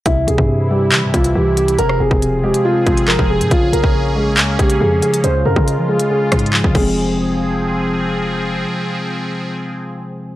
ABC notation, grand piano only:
X:1
M:4/4
L:1/8
Q:1/4=139
K:Fm
V:1 name="Grand piano"
=E A2 G z F G G | B A2 G F2 B A | F B2 A z G A A | c B2 A A3 A- |
A6 z2 | z8 |]